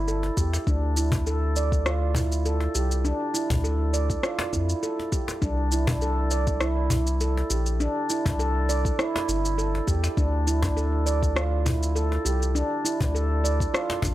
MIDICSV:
0, 0, Header, 1, 5, 480
1, 0, Start_track
1, 0, Tempo, 594059
1, 544, Time_signature, 4, 2, 24, 8
1, 11428, End_track
2, 0, Start_track
2, 0, Title_t, "Handpan"
2, 0, Program_c, 0, 114
2, 63, Note_on_c, 0, 69, 84
2, 138, Note_off_c, 0, 69, 0
2, 302, Note_on_c, 0, 67, 71
2, 377, Note_off_c, 0, 67, 0
2, 543, Note_on_c, 0, 62, 91
2, 668, Note_off_c, 0, 62, 0
2, 783, Note_on_c, 0, 64, 70
2, 908, Note_off_c, 0, 64, 0
2, 1024, Note_on_c, 0, 69, 86
2, 1099, Note_off_c, 0, 69, 0
2, 1264, Note_on_c, 0, 74, 65
2, 1388, Note_off_c, 0, 74, 0
2, 1503, Note_on_c, 0, 65, 88
2, 1627, Note_off_c, 0, 65, 0
2, 1745, Note_on_c, 0, 64, 70
2, 1869, Note_off_c, 0, 64, 0
2, 1983, Note_on_c, 0, 69, 77
2, 2058, Note_off_c, 0, 69, 0
2, 2223, Note_on_c, 0, 67, 71
2, 2298, Note_off_c, 0, 67, 0
2, 2461, Note_on_c, 0, 62, 99
2, 2587, Note_off_c, 0, 62, 0
2, 2700, Note_on_c, 0, 64, 70
2, 2826, Note_off_c, 0, 64, 0
2, 2941, Note_on_c, 0, 69, 82
2, 3017, Note_off_c, 0, 69, 0
2, 3179, Note_on_c, 0, 74, 70
2, 3306, Note_off_c, 0, 74, 0
2, 3421, Note_on_c, 0, 65, 89
2, 3546, Note_off_c, 0, 65, 0
2, 3660, Note_on_c, 0, 64, 69
2, 3786, Note_off_c, 0, 64, 0
2, 3902, Note_on_c, 0, 69, 73
2, 3977, Note_off_c, 0, 69, 0
2, 4138, Note_on_c, 0, 67, 72
2, 4216, Note_off_c, 0, 67, 0
2, 4377, Note_on_c, 0, 62, 96
2, 4505, Note_off_c, 0, 62, 0
2, 4624, Note_on_c, 0, 64, 70
2, 4748, Note_off_c, 0, 64, 0
2, 4754, Note_on_c, 0, 62, 94
2, 4853, Note_off_c, 0, 62, 0
2, 4863, Note_on_c, 0, 69, 81
2, 4938, Note_off_c, 0, 69, 0
2, 5102, Note_on_c, 0, 74, 69
2, 5227, Note_off_c, 0, 74, 0
2, 5341, Note_on_c, 0, 64, 91
2, 5467, Note_off_c, 0, 64, 0
2, 5586, Note_on_c, 0, 64, 69
2, 5709, Note_off_c, 0, 64, 0
2, 5825, Note_on_c, 0, 69, 77
2, 5899, Note_off_c, 0, 69, 0
2, 6063, Note_on_c, 0, 67, 69
2, 6138, Note_off_c, 0, 67, 0
2, 6304, Note_on_c, 0, 62, 96
2, 6428, Note_off_c, 0, 62, 0
2, 6544, Note_on_c, 0, 64, 74
2, 6668, Note_off_c, 0, 64, 0
2, 6674, Note_on_c, 0, 62, 90
2, 6773, Note_off_c, 0, 62, 0
2, 6782, Note_on_c, 0, 69, 85
2, 6857, Note_off_c, 0, 69, 0
2, 7022, Note_on_c, 0, 74, 72
2, 7147, Note_off_c, 0, 74, 0
2, 7263, Note_on_c, 0, 64, 90
2, 7388, Note_off_c, 0, 64, 0
2, 7503, Note_on_c, 0, 64, 75
2, 7628, Note_off_c, 0, 64, 0
2, 7741, Note_on_c, 0, 69, 80
2, 7817, Note_off_c, 0, 69, 0
2, 7978, Note_on_c, 0, 67, 72
2, 8056, Note_off_c, 0, 67, 0
2, 8221, Note_on_c, 0, 62, 90
2, 8347, Note_off_c, 0, 62, 0
2, 8461, Note_on_c, 0, 64, 73
2, 8587, Note_off_c, 0, 64, 0
2, 8593, Note_on_c, 0, 62, 94
2, 8692, Note_off_c, 0, 62, 0
2, 8700, Note_on_c, 0, 69, 85
2, 8776, Note_off_c, 0, 69, 0
2, 8939, Note_on_c, 0, 74, 71
2, 9066, Note_off_c, 0, 74, 0
2, 9177, Note_on_c, 0, 65, 89
2, 9305, Note_off_c, 0, 65, 0
2, 9417, Note_on_c, 0, 64, 74
2, 9545, Note_off_c, 0, 64, 0
2, 9659, Note_on_c, 0, 69, 81
2, 9736, Note_off_c, 0, 69, 0
2, 9898, Note_on_c, 0, 67, 74
2, 9976, Note_off_c, 0, 67, 0
2, 10140, Note_on_c, 0, 62, 92
2, 10266, Note_off_c, 0, 62, 0
2, 10380, Note_on_c, 0, 64, 73
2, 10506, Note_off_c, 0, 64, 0
2, 10511, Note_on_c, 0, 62, 93
2, 10611, Note_off_c, 0, 62, 0
2, 10623, Note_on_c, 0, 69, 84
2, 10698, Note_off_c, 0, 69, 0
2, 10861, Note_on_c, 0, 74, 73
2, 10986, Note_off_c, 0, 74, 0
2, 11101, Note_on_c, 0, 65, 93
2, 11226, Note_off_c, 0, 65, 0
2, 11341, Note_on_c, 0, 62, 75
2, 11428, Note_off_c, 0, 62, 0
2, 11428, End_track
3, 0, Start_track
3, 0, Title_t, "Analog synth bass"
3, 0, Program_c, 1, 38
3, 0, Note_on_c, 1, 31, 88
3, 247, Note_off_c, 1, 31, 0
3, 302, Note_on_c, 1, 40, 80
3, 471, Note_off_c, 1, 40, 0
3, 542, Note_on_c, 1, 38, 93
3, 2165, Note_off_c, 1, 38, 0
3, 2225, Note_on_c, 1, 36, 87
3, 2526, Note_off_c, 1, 36, 0
3, 2831, Note_on_c, 1, 38, 93
3, 3364, Note_off_c, 1, 38, 0
3, 3661, Note_on_c, 1, 41, 84
3, 3830, Note_off_c, 1, 41, 0
3, 4380, Note_on_c, 1, 36, 96
3, 6004, Note_off_c, 1, 36, 0
3, 6063, Note_on_c, 1, 34, 83
3, 6365, Note_off_c, 1, 34, 0
3, 6673, Note_on_c, 1, 36, 100
3, 7205, Note_off_c, 1, 36, 0
3, 7503, Note_on_c, 1, 31, 88
3, 7925, Note_off_c, 1, 31, 0
3, 7981, Note_on_c, 1, 40, 88
3, 8150, Note_off_c, 1, 40, 0
3, 8221, Note_on_c, 1, 38, 90
3, 9844, Note_off_c, 1, 38, 0
3, 9902, Note_on_c, 1, 36, 82
3, 10204, Note_off_c, 1, 36, 0
3, 10513, Note_on_c, 1, 38, 102
3, 11045, Note_off_c, 1, 38, 0
3, 11343, Note_on_c, 1, 33, 92
3, 11428, Note_off_c, 1, 33, 0
3, 11428, End_track
4, 0, Start_track
4, 0, Title_t, "Cajon"
4, 187, Note_on_c, 9, 38, 37
4, 267, Note_off_c, 9, 38, 0
4, 432, Note_on_c, 9, 38, 54
4, 512, Note_off_c, 9, 38, 0
4, 903, Note_on_c, 9, 36, 83
4, 905, Note_on_c, 9, 38, 64
4, 984, Note_off_c, 9, 36, 0
4, 986, Note_off_c, 9, 38, 0
4, 1734, Note_on_c, 9, 36, 78
4, 1815, Note_off_c, 9, 36, 0
4, 2104, Note_on_c, 9, 38, 35
4, 2185, Note_off_c, 9, 38, 0
4, 2830, Note_on_c, 9, 36, 87
4, 2830, Note_on_c, 9, 38, 58
4, 2911, Note_off_c, 9, 36, 0
4, 2911, Note_off_c, 9, 38, 0
4, 3544, Note_on_c, 9, 38, 74
4, 3625, Note_off_c, 9, 38, 0
4, 4036, Note_on_c, 9, 38, 34
4, 4117, Note_off_c, 9, 38, 0
4, 4266, Note_on_c, 9, 38, 55
4, 4347, Note_off_c, 9, 38, 0
4, 4745, Note_on_c, 9, 38, 64
4, 4748, Note_on_c, 9, 36, 96
4, 4826, Note_off_c, 9, 38, 0
4, 4829, Note_off_c, 9, 36, 0
4, 5576, Note_on_c, 9, 36, 73
4, 5657, Note_off_c, 9, 36, 0
4, 5959, Note_on_c, 9, 38, 35
4, 6039, Note_off_c, 9, 38, 0
4, 6673, Note_on_c, 9, 36, 80
4, 6677, Note_on_c, 9, 38, 62
4, 6754, Note_off_c, 9, 36, 0
4, 6758, Note_off_c, 9, 38, 0
4, 7399, Note_on_c, 9, 38, 70
4, 7480, Note_off_c, 9, 38, 0
4, 7877, Note_on_c, 9, 38, 36
4, 7958, Note_off_c, 9, 38, 0
4, 8110, Note_on_c, 9, 38, 52
4, 8190, Note_off_c, 9, 38, 0
4, 8585, Note_on_c, 9, 36, 86
4, 8586, Note_on_c, 9, 38, 63
4, 8666, Note_off_c, 9, 36, 0
4, 8667, Note_off_c, 9, 38, 0
4, 9424, Note_on_c, 9, 36, 80
4, 9505, Note_off_c, 9, 36, 0
4, 9793, Note_on_c, 9, 38, 39
4, 9874, Note_off_c, 9, 38, 0
4, 10508, Note_on_c, 9, 36, 77
4, 10511, Note_on_c, 9, 38, 61
4, 10589, Note_off_c, 9, 36, 0
4, 10592, Note_off_c, 9, 38, 0
4, 11230, Note_on_c, 9, 38, 73
4, 11310, Note_off_c, 9, 38, 0
4, 11331, Note_on_c, 9, 36, 76
4, 11333, Note_on_c, 9, 38, 34
4, 11412, Note_off_c, 9, 36, 0
4, 11414, Note_off_c, 9, 38, 0
4, 11428, End_track
5, 0, Start_track
5, 0, Title_t, "Drums"
5, 64, Note_on_c, 9, 82, 30
5, 145, Note_off_c, 9, 82, 0
5, 301, Note_on_c, 9, 36, 100
5, 303, Note_on_c, 9, 82, 81
5, 382, Note_off_c, 9, 36, 0
5, 384, Note_off_c, 9, 82, 0
5, 437, Note_on_c, 9, 82, 45
5, 517, Note_off_c, 9, 82, 0
5, 541, Note_on_c, 9, 36, 118
5, 544, Note_on_c, 9, 82, 33
5, 622, Note_off_c, 9, 36, 0
5, 625, Note_off_c, 9, 82, 0
5, 782, Note_on_c, 9, 82, 82
5, 863, Note_off_c, 9, 82, 0
5, 912, Note_on_c, 9, 36, 99
5, 915, Note_on_c, 9, 82, 49
5, 993, Note_off_c, 9, 36, 0
5, 996, Note_off_c, 9, 82, 0
5, 1023, Note_on_c, 9, 82, 35
5, 1104, Note_off_c, 9, 82, 0
5, 1262, Note_on_c, 9, 82, 75
5, 1343, Note_off_c, 9, 82, 0
5, 1391, Note_on_c, 9, 36, 104
5, 1397, Note_on_c, 9, 82, 45
5, 1472, Note_off_c, 9, 36, 0
5, 1478, Note_off_c, 9, 82, 0
5, 1502, Note_on_c, 9, 37, 79
5, 1504, Note_on_c, 9, 82, 32
5, 1583, Note_off_c, 9, 37, 0
5, 1585, Note_off_c, 9, 82, 0
5, 1746, Note_on_c, 9, 82, 78
5, 1827, Note_off_c, 9, 82, 0
5, 1875, Note_on_c, 9, 82, 47
5, 1956, Note_off_c, 9, 82, 0
5, 1984, Note_on_c, 9, 82, 30
5, 2065, Note_off_c, 9, 82, 0
5, 2222, Note_on_c, 9, 82, 81
5, 2303, Note_off_c, 9, 82, 0
5, 2355, Note_on_c, 9, 82, 44
5, 2435, Note_off_c, 9, 82, 0
5, 2464, Note_on_c, 9, 82, 34
5, 2544, Note_off_c, 9, 82, 0
5, 2705, Note_on_c, 9, 82, 82
5, 2786, Note_off_c, 9, 82, 0
5, 2830, Note_on_c, 9, 36, 109
5, 2835, Note_on_c, 9, 82, 44
5, 2911, Note_off_c, 9, 36, 0
5, 2916, Note_off_c, 9, 82, 0
5, 2946, Note_on_c, 9, 82, 32
5, 3027, Note_off_c, 9, 82, 0
5, 3183, Note_on_c, 9, 82, 74
5, 3264, Note_off_c, 9, 82, 0
5, 3311, Note_on_c, 9, 36, 100
5, 3314, Note_on_c, 9, 82, 43
5, 3392, Note_off_c, 9, 36, 0
5, 3395, Note_off_c, 9, 82, 0
5, 3421, Note_on_c, 9, 37, 74
5, 3423, Note_on_c, 9, 82, 33
5, 3502, Note_off_c, 9, 37, 0
5, 3504, Note_off_c, 9, 82, 0
5, 3660, Note_on_c, 9, 36, 57
5, 3663, Note_on_c, 9, 82, 72
5, 3741, Note_off_c, 9, 36, 0
5, 3744, Note_off_c, 9, 82, 0
5, 3792, Note_on_c, 9, 82, 42
5, 3872, Note_off_c, 9, 82, 0
5, 3903, Note_on_c, 9, 82, 31
5, 3984, Note_off_c, 9, 82, 0
5, 4140, Note_on_c, 9, 36, 96
5, 4141, Note_on_c, 9, 82, 82
5, 4221, Note_off_c, 9, 36, 0
5, 4222, Note_off_c, 9, 82, 0
5, 4272, Note_on_c, 9, 82, 41
5, 4353, Note_off_c, 9, 82, 0
5, 4380, Note_on_c, 9, 36, 114
5, 4381, Note_on_c, 9, 82, 31
5, 4460, Note_off_c, 9, 36, 0
5, 4462, Note_off_c, 9, 82, 0
5, 4620, Note_on_c, 9, 82, 75
5, 4701, Note_off_c, 9, 82, 0
5, 4751, Note_on_c, 9, 36, 98
5, 4753, Note_on_c, 9, 82, 45
5, 4831, Note_off_c, 9, 36, 0
5, 4834, Note_off_c, 9, 82, 0
5, 4859, Note_on_c, 9, 82, 31
5, 4940, Note_off_c, 9, 82, 0
5, 5097, Note_on_c, 9, 82, 68
5, 5178, Note_off_c, 9, 82, 0
5, 5229, Note_on_c, 9, 82, 44
5, 5230, Note_on_c, 9, 36, 100
5, 5310, Note_off_c, 9, 82, 0
5, 5311, Note_off_c, 9, 36, 0
5, 5337, Note_on_c, 9, 37, 71
5, 5339, Note_on_c, 9, 82, 33
5, 5418, Note_off_c, 9, 37, 0
5, 5420, Note_off_c, 9, 82, 0
5, 5580, Note_on_c, 9, 82, 70
5, 5661, Note_off_c, 9, 82, 0
5, 5712, Note_on_c, 9, 82, 44
5, 5792, Note_off_c, 9, 82, 0
5, 5822, Note_on_c, 9, 82, 31
5, 5903, Note_off_c, 9, 82, 0
5, 6063, Note_on_c, 9, 82, 84
5, 6143, Note_off_c, 9, 82, 0
5, 6191, Note_on_c, 9, 82, 43
5, 6272, Note_off_c, 9, 82, 0
5, 6305, Note_on_c, 9, 82, 32
5, 6386, Note_off_c, 9, 82, 0
5, 6543, Note_on_c, 9, 82, 74
5, 6624, Note_off_c, 9, 82, 0
5, 6671, Note_on_c, 9, 36, 97
5, 6675, Note_on_c, 9, 82, 42
5, 6751, Note_off_c, 9, 36, 0
5, 6756, Note_off_c, 9, 82, 0
5, 6783, Note_on_c, 9, 82, 31
5, 6864, Note_off_c, 9, 82, 0
5, 7026, Note_on_c, 9, 82, 66
5, 7106, Note_off_c, 9, 82, 0
5, 7151, Note_on_c, 9, 36, 96
5, 7157, Note_on_c, 9, 82, 42
5, 7232, Note_off_c, 9, 36, 0
5, 7237, Note_off_c, 9, 82, 0
5, 7264, Note_on_c, 9, 37, 75
5, 7266, Note_on_c, 9, 82, 32
5, 7344, Note_off_c, 9, 37, 0
5, 7347, Note_off_c, 9, 82, 0
5, 7506, Note_on_c, 9, 82, 72
5, 7587, Note_off_c, 9, 82, 0
5, 7638, Note_on_c, 9, 82, 44
5, 7719, Note_off_c, 9, 82, 0
5, 7747, Note_on_c, 9, 82, 29
5, 7828, Note_off_c, 9, 82, 0
5, 7980, Note_on_c, 9, 36, 90
5, 7983, Note_on_c, 9, 82, 72
5, 8061, Note_off_c, 9, 36, 0
5, 8063, Note_off_c, 9, 82, 0
5, 8111, Note_on_c, 9, 82, 41
5, 8192, Note_off_c, 9, 82, 0
5, 8220, Note_on_c, 9, 36, 116
5, 8222, Note_on_c, 9, 82, 32
5, 8301, Note_off_c, 9, 36, 0
5, 8303, Note_off_c, 9, 82, 0
5, 8464, Note_on_c, 9, 82, 78
5, 8545, Note_off_c, 9, 82, 0
5, 8590, Note_on_c, 9, 36, 99
5, 8593, Note_on_c, 9, 82, 45
5, 8671, Note_off_c, 9, 36, 0
5, 8674, Note_off_c, 9, 82, 0
5, 8705, Note_on_c, 9, 82, 33
5, 8786, Note_off_c, 9, 82, 0
5, 8942, Note_on_c, 9, 82, 64
5, 9023, Note_off_c, 9, 82, 0
5, 9071, Note_on_c, 9, 36, 91
5, 9076, Note_on_c, 9, 82, 42
5, 9151, Note_off_c, 9, 36, 0
5, 9157, Note_off_c, 9, 82, 0
5, 9182, Note_on_c, 9, 37, 77
5, 9184, Note_on_c, 9, 82, 32
5, 9263, Note_off_c, 9, 37, 0
5, 9265, Note_off_c, 9, 82, 0
5, 9423, Note_on_c, 9, 82, 67
5, 9504, Note_off_c, 9, 82, 0
5, 9558, Note_on_c, 9, 82, 44
5, 9638, Note_off_c, 9, 82, 0
5, 9665, Note_on_c, 9, 82, 32
5, 9746, Note_off_c, 9, 82, 0
5, 9905, Note_on_c, 9, 82, 76
5, 9986, Note_off_c, 9, 82, 0
5, 10039, Note_on_c, 9, 82, 40
5, 10119, Note_off_c, 9, 82, 0
5, 10147, Note_on_c, 9, 82, 33
5, 10228, Note_off_c, 9, 82, 0
5, 10387, Note_on_c, 9, 82, 77
5, 10468, Note_off_c, 9, 82, 0
5, 10511, Note_on_c, 9, 36, 96
5, 10516, Note_on_c, 9, 82, 44
5, 10592, Note_off_c, 9, 36, 0
5, 10597, Note_off_c, 9, 82, 0
5, 10631, Note_on_c, 9, 82, 33
5, 10712, Note_off_c, 9, 82, 0
5, 10869, Note_on_c, 9, 82, 69
5, 10950, Note_off_c, 9, 82, 0
5, 10991, Note_on_c, 9, 36, 98
5, 11001, Note_on_c, 9, 82, 45
5, 11072, Note_off_c, 9, 36, 0
5, 11081, Note_off_c, 9, 82, 0
5, 11105, Note_on_c, 9, 37, 76
5, 11108, Note_on_c, 9, 82, 32
5, 11186, Note_off_c, 9, 37, 0
5, 11188, Note_off_c, 9, 82, 0
5, 11342, Note_on_c, 9, 36, 61
5, 11349, Note_on_c, 9, 82, 71
5, 11422, Note_off_c, 9, 36, 0
5, 11428, Note_off_c, 9, 82, 0
5, 11428, End_track
0, 0, End_of_file